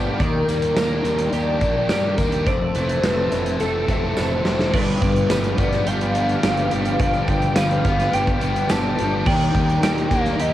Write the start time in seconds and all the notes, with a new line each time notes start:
Already playing: G1 F3 G3 B3 D4 G4 B4 F5 G5 D6
0.20 D#2 D#3 A#4 D5, kick, closed hi-hat, tambourine
0.48 D#2 G3 A#3 A#4, closed hi-hat, tambourine
0.62 closed hi-hat
0.76 D#2 A#3 D4 A#4, snare, closed hi-hat, tambourine
1.04 D#2 D#3 G3, closed hi-hat, tambourine
1.19 closed hi-hat
1.33 D#2 A#3 D4 G4 D5, closed hi-hat, tambourine
1.61 A#1 A#3 D4, kick, closed hi-hat
1.89 G2 G3 G4 D5, snare, closed hi-hat, tambourine
2.18 D#2 D4 A#4, kick, closed hi-hat, tambourine
2.32 closed hi-hat
2.45 F1 F2 A4 C5 D5 E5 A5, kick, closed hi-hat, tambourine
2.75 F1 E3 A3, closed hi-hat, tambourine
2.89 closed hi-hat
3.03 F1 A3 C4 B4, snare, closed hi-hat, tambourine
3.32 F1 E3, closed hi-hat, tambourine
3.46 closed hi-hat
3.60 F1 A3 C4 A4, closed hi-hat, tambourine
3.88 F1 A3 C4, kick, closed hi-hat, tambourine
4.16 F1 E3 E4 A4 C5, snare, tambourine
4.45 F1 C4, snare, tambourine
4.59 snare
4.73 G1 G2 B4 D5 F5 G5 D6, kick, crash
4.88 closed hi-hat
5.02 G1 D3, kick, closed hi-hat
5.16 closed hi-hat
5.30 G1 F3 B4, snare, closed hi-hat, tambourine
5.44 closed hi-hat
5.58 G1 B3 D5, kick, closed hi-hat
5.73 snare, closed hi-hat
5.87 G1 G3 D4 G4 F5, closed hi-hat
6.01 closed hi-hat
6.15 B3, closed hi-hat
6.29 closed hi-hat
6.43 G1 D3 F3 G4, snare, closed hi-hat, tambourine
6.57 closed hi-hat
6.71 G1 F3 G3, closed hi-hat
6.85 closed hi-hat
7.00 G1 G2 D5 F5, kick, closed hi-hat
7.14 closed hi-hat
7.28 D3 G5, kick, closed hi-hat
7.42 closed hi-hat
7.56 G1 F3 B4 F5, snare, closed hi-hat, tambourine
7.71 closed hi-hat
7.85 G1 B3, kick, closed hi-hat
8.00 snare, closed hi-hat
8.13 G1 G3 D4 G4 G5, closed hi-hat
8.27 kick, closed hi-hat
8.41 G1 B3, closed hi-hat
8.56 closed hi-hat
8.69 G1 D3 F3 G4 A5, snare, closed hi-hat, tambourine
8.98 G1 F3 G3, closed hi-hat
9.26 D#2 D#3 A#4 D5 G5, kick, crash
9.41 closed hi-hat
9.54 D#2 G3, kick, closed hi-hat
9.69 closed hi-hat
9.82 D#2 G3 A#4, snare, closed hi-hat, tambourine
9.98 closed hi-hat
10.10 D#2 A#3 D4 F5, kick, closed hi-hat
10.26 snare, closed hi-hat
10.39 D#2 A#3 D4 G4 D#5, closed hi-hat